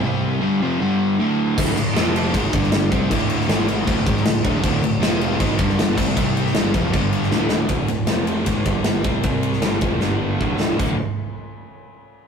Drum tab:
CC |----------------|x-x-x-x-x-x-x-x-|x-x-x-x-x-x-x-x-|x-x-x-x-x-x-x-x-|
RD |----------------|----------------|----------------|----------------|
SD |----------------|----o------oo---|---oo------oo---|----o------oo---|
BD |----------------|o-------o-o---o-|o-------o-o---o-|o-------o-o---o-|

CC |x-x-x-x-x-x-----|----------------|----------------|x---------------|
RD |----------------|x-x-x-x-x-x-x-x-|x-x-x-x---------|----------------|
SD |---oo------oo-o-|----o-------o---|---oo---o-----o-|----------------|
BD |o-----o-o-------|o-------o-o---o-|o-----o-----o---|o---------------|